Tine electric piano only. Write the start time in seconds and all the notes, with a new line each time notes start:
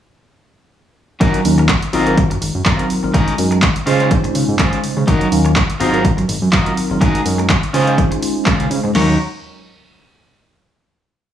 1.20 F#3 C#4 D#4 F4 A#4
1.45 F#3 C#4 D#4 F4 A#4
1.93 F#3 C4 D#4 F4 D#5
2.06 F#3 C4 D#4 F4 A#4
2.79 F#3 C4 D#4 F4 A#4
3.03 F#3 C4 D#4 F4 A#4
3.38 G#3 C#4 D#4 F#4 A#4
3.86 G#3 C#4 D#4 F4 C5
3.99 G#3 C#4 D#4 F4 C5
5.07 F#3 C#4 D#4 F4 A#4
5.32 F#3 C#4 D#4 F4 A#4
5.80 F#3 C4 D#4 F4 D#5
5.93 F#3 C4 D#4 F4 A#4
6.66 F#3 C4 D#4 F4 A#4
6.90 F#3 C4 D#4 F4 A#4
7.25 G#3 C#4 D#4 F#4 A#4
7.74 G#3 C#4 D#4 F4 C5
7.87 G#3 C#4 D#4 F4 C5
8.94 F#3 C#4 D#4 F4 A#4